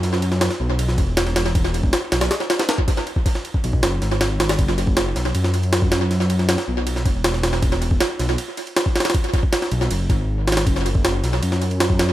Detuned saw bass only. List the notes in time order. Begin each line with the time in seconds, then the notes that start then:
Already playing: F#2
0.60 B1
0.98 E1
2.12 B1
3.64 B1
3.83 F#1
4.02 G#1
4.59 F#1
5.16 B1
5.35 F#2
6.68 B1
7.05 E1
8.20 B1
9.71 B1
9.91 F#1
10.10 G#1
10.67 F#1
11.24 B1
11.43 F#2